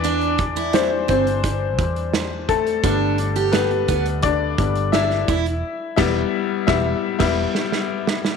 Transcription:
<<
  \new Staff \with { instrumentName = "Steel-string acoustic guitar" } { \time 4/4 \key e \minor \tempo 4 = 86 d'8 r16 e'8 r16 c'16 r2 r16 | d'8 r16 g'8 r16 b16 r4 r16 d'16 r16 e'16 r16 | r1 | }
  \new Staff \with { instrumentName = "Upright piano" } { \time 4/4 \key e \minor <d' d''>4 <c' c''>8 <c' c''>2 <a a'>8~ | <a a'>4 <b b'>4 <d' d''>4 <e' e''>4 | r8 <g b e' e''>8 r8 <g b e' e''>8 r16 <g b e' e''>8 r4 r16 | }
  \new Staff \with { instrumentName = "Upright piano" } { \time 4/4 \key e \minor <e b'>4 <e g d'>8 r2 r8 | <g b d'>2~ <g b d'>8 <g b d'>8 r4 | r1 | }
  \new Staff \with { instrumentName = "Fingered electric bass" } { \clef bass \time 4/4 \key e \minor e,4. g,,4 e,4. | g,,4. d,4 g,,4 e,,8 | r8 e,,8 r8 e,,8 r16 e,,8 r4 r16 | }
  \new DrumStaff \with { instrumentName = "Drums" } \drummode { \time 4/4 hh16 hh16 <hh bd>16 hh16 <hh sn>8 <hh bd>16 hh16 <hh bd>8 <hh bd>16 hh16 <hh sn>8 <hh bd>16 hh16 | <hh bd>8 hh16 hh16 <hh sn>16 hh16 <hh bd>16 hh16 <hh bd>8 <hh bd>16 hh16 <hh sn>16 sn16 <hh bd>16 hh16 | r8 <cymc bd sn>8 r8 <bd sn>8 r16 <cymc bd sn>8 sn16 sn8 sn16 sn16 | }
>>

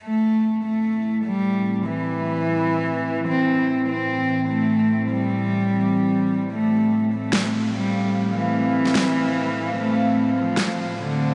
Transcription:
<<
  \new Staff \with { instrumentName = "Ambient pad" } { \time 4/4 \key a \minor \tempo 4 = 148 <a, e c' e'>1~ | <a, e c' e'>1~ | <a, e c' e'>1~ | <a, e c' e'>1 |
<a, a c' f''>1~ | <a, a c' f''>1~ | <a, a c' f''>1 | }
  \new Staff \with { instrumentName = "Cello" } { \time 4/4 \key a \minor a4. a4. g4~ | g8 e2.~ e8 | c'4. c'4. a4~ | a8 g2.~ g8 |
a4. a4. g4~ | g8 e2.~ e8 | a4. f4. d4 | }
  \new DrumStaff \with { instrumentName = "Drums" } \drummode { \time 4/4 r4 r4 r4 r4 | r4 r4 r4 r4 | r4 r4 r4 r4 | r4 r4 r4 r4 |
r4 r4 sn4 r4 | r4 r8. sn16 sn4 r4 | r4 r4 sn4 r4 | }
>>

